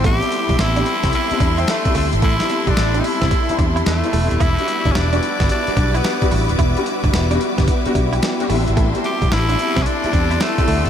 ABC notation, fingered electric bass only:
X:1
M:4/4
L:1/16
Q:"Swing 16ths" 1/4=110
K:Ador
V:1 name="Fingered electric bass" clef=bass
A,,, z2 B,,, A,,,2 z C,, z2 E,,2 z2 D,, ^G,,, | A,,, z2 B,,, A,,,2 z C,, z2 E,,2 E,, z E,,, ^D,,, | E,,, z2 G,,, E,,,2 z G,,, z2 B,,,2 z2 A,,, ^D,,, | E,,, z2 G,,, E,,,2 z G,,, z2 B,,,2 z2 A,,, ^G,,, |
A,,, z2 B,,, A,,,2 z C,, z2 E,,2 z2 D,, ^G,,, |]